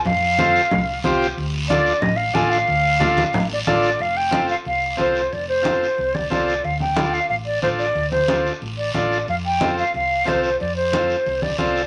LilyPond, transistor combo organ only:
\new Staff \with { instrumentName = "Transistor combo organ" } { \time 4/4 \key f \major \tempo 4 = 182 r4 <c' f' a'>8 r4. <c' f' g'>8 r8 | r4 <d' f' a'>8 r4. <d' f' a'>8 r8 | r4 <d' f' a'>8 r4. <d' f' a'>8 r8 | r4 <c' f' a'>8 r4. <c' f' a'>8 r8 |
r4 <c' f' a'>8 r4. <c' f' a'>8 r8 | r4 <d' f' a'>8 r4. <d' f' a'>8 r8 | r4 <d' f' a'>8 r4. <d' f' a'>8 r8 | r4 <c' f' a'>8 r4. <c' f' a'>8 r8 |
r4 <c' f' a'>8 r4. <c' f' a'>8 r8 | }